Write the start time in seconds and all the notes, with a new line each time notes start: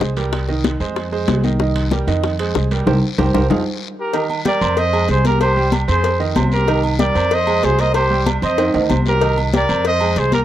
Already playing: G#3 G#4 C5
0.01 C2, high bongo, low bongo, high conga, short guiro
0.17 G3 G4 A#4, high timbale, short guiro
0.33 high bongo, high conga, high timbale, long guiro
0.48 D#3 D#4 D#5, high bongo, high conga
0.64 high bongo, high conga, high timbale, short guiro
0.80 F2 G#3 G#4 C5, short guiro
0.96 high bongo, high conga, high timbale, long guiro
1.12 G#3 G#4 C5, high bongo, high conga
1.28 C2, high bongo, low bongo, high conga, high timbale, low timbale, short guiro
1.44 D#3 D#4 D#5, high bongo, high conga, short guiro
1.59 D#3 D#4 D#5, high bongo, high conga, long guiro
1.75 high conga, high timbale
1.91 G3 G4 A#4, high bongo, high conga, short guiro
2.07 F2 D#3 D#4 D#5, high conga, high timbale, short guiro
2.23 high bongo, high conga, high timbale, long guiro
2.39 G#3 G#4 C5, high conga, high timbale
2.55 C2, high bongo, low bongo, high conga, short guiro
2.71 G3 G4 A#4, high timbale, short guiro
2.87 C2 G4 A#4 C5, low bongo, low conga, high timbale, long guiro
3.18 C2 G4 A#4 C5, low bongo, low conga, high timbale, long guiro
3.34 C2 G4 A#4 C5, low bongo, low conga, high timbale, long guiro
3.50 F2 D#4 F4 G#4, low bongo, low conga, high timbale, long guiro
3.99 G4 A#4
4.13 D#3 D#4 D#5, cowbell, high conga, low agogo, long guiro
4.30 high conga, low agogo
4.45 G3 G4 A#4 D5 G5, cowbell, high conga, short guiro
4.61 F2 C4 C5 C6, high conga, low agogo, short guiro
4.77 C5 D#5, cowbell, high conga, low agogo, long guiro
4.93 G#3 G#4 G#5, high conga, low agogo
5.08 C2 G#4 C5, cowbell, high conga, short guiro
5.24 A#3 G4 A#4 A#5, cowbell, high conga, short guiro
5.41 G4 C5, cowbell, high conga, low agogo, long guiro
5.56 G3 G4 G5, high conga
5.72 cowbell, high conga, low agogo, short guiro
5.88 F2 C4 G#4 C5 C6, low agogo, short guiro
6.04 cowbell, high conga, low agogo, long guiro
6.20 D#3 D#4 D#5, high conga
6.36 C2 C4 C5 C6, cowbell, high conga, low timbale, low agogo, short guiro
6.52 G4 A#4, short guiro
6.67 D#3 D#4 D#5, cowbell, high conga, low agogo, long guiro
6.84 high conga, low agogo
6.99 G3 G4 A#4 D5 G5, cowbell, high conga, short guiro
7.15 F2 C4 C5 C6, high conga, low agogo, short guiro
7.31 C5 D#5, cowbell, high conga, low agogo, long guiro
7.47 G#3 G#4 G#5, high conga, low agogo
7.63 C2 G#4 C5, cowbell, high conga, low timbale, short guiro
7.78 A#3 A#4 C5 D#5 A#5, cowbell, short guiro
7.94 G4 C5, cowbell, high conga, low agogo, long guiro
8.10 G3 G4 G5, high conga
8.26 cowbell, high conga, low agogo, short guiro
8.42 F2 C4 C5 D#5 C6, low agogo, short guiro
8.58 cowbell, high conga, high timbale, low agogo, long guiro
8.74 D2 D#3 D#4 D#5, high conga, high timbale
8.90 C2 C4 C5 C6, cowbell, high conga, low agogo, short guiro
9.06 G4 A#4, low timbale, short guiro
9.21 D#3 D#4 D#5, cowbell, high conga, low agogo, long guiro
9.37 high conga, low agogo
9.53 G3 G4 A#4 D5 G5, cowbell, high conga, short guiro
9.69 F2 C4 C5 C6, high conga, low agogo, short guiro
9.85 C5 D#5, cowbell, high conga, low agogo, long guiro
10.00 G#3 G#4 G#5, high conga, low agogo
10.16 C2 G#4 C5, cowbell, high conga, short guiro
10.32 A#3 G4 A#4 A#5, cowbell, high conga, short guiro